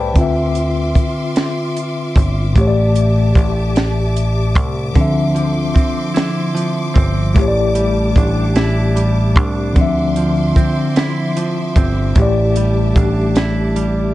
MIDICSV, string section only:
0, 0, Header, 1, 2, 480
1, 0, Start_track
1, 0, Key_signature, -1, "minor"
1, 0, Tempo, 800000
1, 94, Time_signature, 6, 3, 24, 8
1, 8485, End_track
2, 0, Start_track
2, 0, Title_t, "String section"
2, 0, Program_c, 0, 48
2, 0, Note_on_c, 0, 67, 74
2, 0, Note_on_c, 0, 76, 68
2, 0, Note_on_c, 0, 81, 69
2, 0, Note_on_c, 0, 86, 82
2, 78, Note_off_c, 0, 81, 0
2, 79, Note_off_c, 0, 67, 0
2, 79, Note_off_c, 0, 86, 0
2, 94, Note_on_c, 0, 65, 78
2, 94, Note_on_c, 0, 84, 70
2, 95, Note_on_c, 0, 86, 85
2, 1519, Note_off_c, 0, 65, 0
2, 1519, Note_off_c, 0, 84, 0
2, 1532, Note_on_c, 0, 81, 70
2, 1534, Note_on_c, 0, 67, 76
2, 2958, Note_off_c, 0, 81, 0
2, 2959, Note_off_c, 0, 67, 0
2, 2975, Note_on_c, 0, 53, 73
2, 2976, Note_on_c, 0, 84, 64
2, 4400, Note_off_c, 0, 53, 0
2, 4401, Note_off_c, 0, 84, 0
2, 4414, Note_on_c, 0, 67, 77
2, 4415, Note_on_c, 0, 81, 68
2, 5831, Note_off_c, 0, 76, 0
2, 5839, Note_off_c, 0, 67, 0
2, 5840, Note_off_c, 0, 81, 0
2, 5851, Note_on_c, 0, 53, 77
2, 5852, Note_on_c, 0, 84, 73
2, 5853, Note_on_c, 0, 76, 70
2, 7278, Note_off_c, 0, 53, 0
2, 7278, Note_off_c, 0, 84, 0
2, 7296, Note_on_c, 0, 67, 78
2, 7297, Note_on_c, 0, 81, 70
2, 8485, Note_off_c, 0, 67, 0
2, 8485, Note_off_c, 0, 76, 0
2, 8485, Note_off_c, 0, 81, 0
2, 8485, Note_off_c, 0, 86, 0
2, 8485, End_track
0, 0, End_of_file